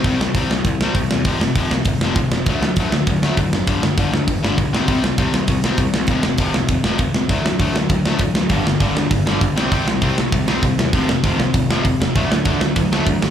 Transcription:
<<
  \new Staff \with { instrumentName = "Overdriven electric guitar" } { \clef bass \time 4/4 \key c \lydian \tempo 4 = 198 <c g c'>8 <c g>8 <c g c'>8 <c g>8 <c g>8 <c g c'>8 <c g>8 <c g>8 | <f, c f>8 <f, c>8 <f, c f>8 <f, c>8 <f, c>8 <f, c f>8 <f, c>8 <f, c>8 | <d fis a>8 <d fis>8 <d fis a>8 <d fis>8 <d fis>8 <d fis a>8 <d fis>8 <d fis>8 | <g, d g>8 <g, d>8 <g, d g>8 <g, d>8 <g, d>8 <g, d g>8 <g, d>8 <c g c'>8 |
<c g c'>8 <c g>8 <c g c'>8 <c g>8 <c g>8 <c g c'>8 <c g>8 <c g>8 | <f, c f>8 <f, c>8 <f, c f>8 <f, c>8 <f, c>8 <f, c f>8 <f, c>8 <f, c>8 | <d fis a>8 <d fis>8 <d fis a>8 <d fis>8 <d fis>8 <d fis a>8 <d fis>8 <d fis>8 | <g, d g>8 <g, d>8 <g, d g>8 <g, d>8 <g, d>8 <g, d g>8 <g, d>8 <c g c'>8 |
<c g c'>8 <c g>8 <c g c'>8 <c g>8 <c g>8 <c g c'>8 <c g>8 <c g>8 | <f, c f>8 <f, c>8 <f, c f>8 <f, c>8 <f, c>8 <f, c f>8 <f, c>8 <f, c>8 | <d fis a>8 <d fis>8 <d fis a>8 <d fis>8 <d fis>8 <d fis a>8 <d fis>8 <d fis>8 | }
  \new Staff \with { instrumentName = "Overdriven electric guitar" } { \clef bass \time 4/4 \key c \lydian r1 | r1 | r1 | r1 |
r1 | r1 | r1 | <g, d g>8 <g, d>8 <g, d g>8 <g, d>8 <g, d>8 <g, d g>8 <g, d>8 <c g c'>8 |
<c g c'>8 <c g>8 <c g c'>8 <c g>8 <c g>8 <c g c'>8 <c g>8 <c g>8 | <f, c f>8 <f, c>8 <f, c f>8 <f, c>8 <f, c>8 <f, c f>8 <f, c>8 <f, c>8 | <d a d'>8 <d a>8 <d a d'>8 <d a>8 <d a>8 <d a d'>8 <d a>8 <d a>8 | }
  \new Staff \with { instrumentName = "Picked electric bass" } { \clef bass \time 4/4 \key c \lydian c8 c,8 c,8 c,8 c,8 c,8 c,8 e,8 | f,,8 f,,8 f,,8 c,8 f,,8 f,,8 f,,8 f,,8 | d,8 d,8 d,8 d,8 d,8 d,8 d,8 fis,,8 | g,,8 g,,8 g,,8 d,8 g,,8 g,,8 b,,8 c,8 |
c8 c,8 c,8 c,8 c,8 c,8 c,8 c,8 | f,,8 f,,8 f,,8 c,8 f,,8 f,,8 f,,8 cis,8 | d,8 d,8 d,8 d,8 d,8 d,8 d,8 d,8 | g,,8 g,,8 g,,8 d,8 g,,8 g,,8 g,,8 c,8 |
c8 c,8 c,8 c,8 c,8 c,8 c,8 e,8 | f,,8 f,,8 f,,8 c,8 f,,8 f,,8 f,,8 f,,8 | d,8 d,8 d,8 d,8 d,8 d,8 d,8 a,,8 | }
  \new DrumStaff \with { instrumentName = "Drums" } \drummode { \time 4/4 <hho bd>8 sn8 <hho bd>8 sn8 <hho bd>8 sn8 <hho bd>8 sn8 | <hho bd>8 sn8 <hho bd>8 sn8 <hho bd>8 sn8 <hho bd>8 sn8 | <hho bd>8 sn8 <hho bd>8 sn8 <hho bd>8 sn8 <hho bd>8 sn8 | <hho bd>8 sn8 <hho bd>8 sn8 <hho bd>8 sn8 <hho bd>8 sn8 |
<hho bd>8 sn8 <hho bd>8 sn8 <hho bd>8 sn8 <hho bd>8 sn8 | <hho bd>8 sn8 <hho bd>8 sn8 <hho bd>8 sn8 <hho bd>8 sn8 | <hho bd>8 sn8 <hho bd>8 sn8 <hho bd>8 sn8 <hho bd>8 sn8 | <hho bd>8 sn8 <hho bd>8 sn8 <hho bd>8 sn8 <hho bd>8 sn8 |
<hho bd>8 sn8 <hho bd>8 sn8 <hho bd>8 sn8 <hho bd>8 sn8 | <hho bd>8 sn8 <hho bd>8 sn8 <hho bd>8 sn8 <hho bd>8 sn8 | <hho bd>8 sn8 <hho bd>8 sn8 <hho bd>8 sn8 <hho bd>8 sn8 | }
>>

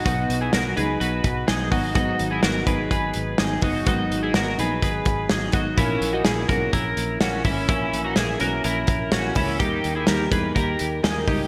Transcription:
<<
  \new Staff \with { instrumentName = "Clean electric guitar" } { \time 4/4 \key gis \minor \tempo 4 = 126 <dis' fis'>8. <e' gis'>16 <fis' ais'>8 <gis' b'>8 <fis' b'>4 <dis' gis'>8 <dis' fis'>8 | <dis' fis'>8. <e' gis'>16 <fis' ais'>8 <gis' b'>8 <gis' b'>4 <dis' gis'>8 <dis' fis'>8 | <dis' fis'>8. <e' gis'>16 <fis' ais'>8 <gis' b'>8 <gis' b'>4 <dis' gis'>8 <dis' fis'>8 | <cis' e'>8. <dis' fis'>16 <e' gis'>8 <fis' ais'>8 <e' ais'>4 <cis' fis'>8 <cis' e'>8 |
<cis' e'>8. <dis' fis'>16 <e' gis'>8 <fis' ais'>8 <e' ais'>4 <cis' fis'>8 <cis' e'>8 | <dis' g'>8. <e' gis'>16 <g' ais'>8 <gis' b'>8 <g' ais'>4 <dis' gis'>8 <dis' g'>8 | }
  \new Staff \with { instrumentName = "Steel-string acoustic guitar" } { \time 4/4 \key gis \minor <b, fis b dis'>4 <b, fis b dis'>8 <fis b dis'>4. <b, fis b dis'>8 <fis b dis'>8 | <gis, dis fis b dis'>4 <dis fis b dis'>8 <fis b dis'>4. <dis fis b dis'>8 <fis b dis'>8 | <gis, dis fis b dis'>4 <dis fis b dis'>8 <fis b dis'>4. <dis fis b dis'>8 <fis b dis'>8 | <ais, e ais cis'>4 <ais, e ais cis'>8 <e ais cis'>4. <ais, e ais cis'>8 <e ais cis'>8 |
<ais, e ais cis'>4 <ais, e ais cis'>8 <e ais cis'>4. <ais, e ais cis'>8 <e ais cis'>8 | <dis g ais dis'>4 <dis g ais dis'>8 <g ais dis'>4. <dis g ais dis'>8 <g ais dis'>8 | }
  \new Staff \with { instrumentName = "Fingered electric bass" } { \clef bass \time 4/4 \key gis \minor b,,8 b,,8 b,,8 cis,8 b,,8 b,,8 b,,8 gis,,8~ | gis,,8 gis,,8 gis,,8 gis,,8 gis,,8 gis,,8 gis,,8 fis,,8 | gis,,8 gis,,8 gis,,8 ais,,8 gis,,8 gis,,8 gis,,8 gis,,8 | ais,,8 ais,,8 ais,,8 b,,8 ais,,8 ais,,8 ais,,8 gis,,8 |
ais,,8 ais,,8 ais,,8 b,,8 ais,,8 ais,,8 ais,,8 cis,8 | dis,8 dis,8 dis,8 e,8 dis,8 dis,8 dis,8 cis,8 | }
  \new DrumStaff \with { instrumentName = "Drums" } \drummode { \time 4/4 <hh bd>8 hh8 <hh sn>8 hh8 hh8 <hh bd>8 <hh sn>8 <hho bd>8 | <hh bd>8 hh8 <hh sn>8 <hh bd>8 <hh bd>8 hh8 <hh sn>8 <hho bd>8 | <hh bd>8 hh8 <hh sn>8 hh8 <hh bd>8 <hh bd>8 <hh sn>8 <hh bd>8 | <hh bd>8 hh8 <hh sn>8 <hh bd>8 <hh bd>8 hh8 <hh sn>8 <hho bd>8 |
<hh bd>8 hh8 <hh sn>8 hh8 hh8 <hh bd>8 <hh sn>8 <hho bd>8 | <hh bd>8 hh8 <hh sn>8 <hh bd>8 <hh bd>8 hh8 <hh sn>8 <hho bd>8 | }
>>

